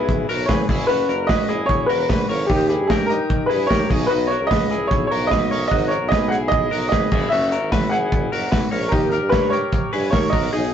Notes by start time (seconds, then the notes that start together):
Already playing: B1 E4 G#4 B4
0.09 kick, hi-hat pedal, open hi-hat
0.29 B1 F#4 A#4, hi-hat pedal, open hi-hat
0.46 G#1 G#4 B4 C#5, kick, snare, hi-hat pedal, open hi-hat
0.69 F#1 E4 G#4, kick, hi-hat pedal, open hi-hat
0.87 F#1 C#4 F#4 B4, hi-hat pedal, open hi-hat
1.09 F#1 F#4 A#4, hi-hat pedal, open hi-hat
1.27 F#4 B4 D#5, kick, snare, hi-hat pedal, open hi-hat
1.49 E4 G#4, hi-hat pedal, open hi-hat
1.66 E1 C#5, kick, hi-hat pedal, open hi-hat
1.86 E1 F#4 A#4 B4, hi-hat pedal, open hi-hat
2.09 A#1 F#4 B4, kick, snare, hi-hat pedal, open hi-hat
2.29 G#1 A#4 C#5, hi-hat pedal, open hi-hat
2.47 D#2 D#4 G4, kick, hi-hat pedal, open hi-hat
2.67 E4 G4 G#4, hi-hat pedal, open hi-hat
2.80 G2
2.87 G4 G#4 A#4, kick, snare, hi-hat pedal, open hi-hat
3.06 D#4 G4 A#4, hi-hat pedal, open hi-hat
3.30 kick, hi-hat pedal, open hi-hat
3.46 E4 G#4 B4
3.50 G2, hi-hat pedal, open hi-hat
3.67 G4 A#4 C#5
3.71 D#2, kick, snare, hi-hat pedal, open hi-hat
3.90 B1 D#4 G#4, kick, hi-hat pedal, open hi-hat
4.07 D#4 F#4 B4
4.11 B1, hi-hat pedal, open hi-hat
4.27 F#4 A#4 C#5, hi-hat pedal, open hi-hat
4.41 C#2
4.47 B4 D#5
4.51 F#4, kick, snare, hi-hat pedal, open hi-hat
4.71 E4 G#4, hi-hat pedal, open hi-hat
4.87 B1 C#5, kick, hi-hat pedal, open hi-hat
5.07 B1 C#5
5.11 F#4 A#4, hi-hat pedal, open hi-hat
5.27 D#5
5.31 F#4 B4, kick, snare, hi-hat pedal, open hi-hat
5.51 A#4 C#5, hi-hat pedal, open hi-hat
5.68 G#1 F#4 D#5, kick, hi-hat pedal, open hi-hat
5.72 D#4
5.88 F#4 A#4 C#5, hi-hat pedal, open hi-hat
6.01 B1
6.08 G#4 B4 D#5, kick, snare, hi-hat pedal, open hi-hat
6.28 E4 G#4 F#5, hi-hat pedal, open hi-hat
6.48 D#5, kick, hi-hat pedal, open hi-hat
6.71 B1 F#4 A#4, hi-hat pedal, open hi-hat
6.89 G#1 B4 D#5, kick, snare, hi-hat pedal, open hi-hat
6.93 G#4
7.11 F#1 E4 G#4, kick, crash
7.29 F#1 C#4 F#4 E5, hi-hat pedal, open hi-hat
7.52 F#4 A#4, hi-hat pedal, open hi-hat
7.62 G#1
7.72 F#4 B4, kick, snare, hi-hat pedal, open hi-hat
7.89 E4 G#4 F#5, hi-hat pedal, open hi-hat
8.12 F#1, kick, hi-hat pedal, open hi-hat
8.32 F#1 F#4 A#4, hi-hat pedal, open hi-hat
8.52 B1 F#4 B4, kick, snare, hi-hat pedal, open hi-hat
8.71 A#1 A#4 C#5, hi-hat pedal, open hi-hat
8.88 D#2 G4 A#4, kick, hi-hat pedal, open hi-hat
8.93 D#4
9.09 A#4, hi-hat pedal, open hi-hat
9.13 G4
9.22 G2
9.29 B4 C#5, kick, snare, hi-hat pedal, open hi-hat
9.34 A#4
9.50 G4 A#4 C#5, hi-hat pedal, open hi-hat
9.72 kick, hi-hat pedal, open hi-hat
9.93 G2 G#4 B4, hi-hat pedal, open hi-hat
10.10 D#2 A#4 C#5, kick, snare, hi-hat pedal, open hi-hat
10.30 B1 F#4 A#4 D#5, kick, hi-hat pedal, open hi-hat
10.53 B1 D#4 G#4, hi-hat pedal, open hi-hat